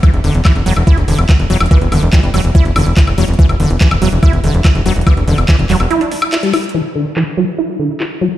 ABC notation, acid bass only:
X:1
M:4/4
L:1/16
Q:1/4=143
K:Em
V:1 name="Acid bass" clef=bass
E, z D, z E, z F, z E z D, z E z F, z | E, z D, z E, z F, z E z D, z E z F, z | E, z D, z E, z F, z E z D, z E z F, z | E, z D, z E, z F, z E2 E, z E G, E z |
E, z D, z E, z F, z E z D, z E z F, z |]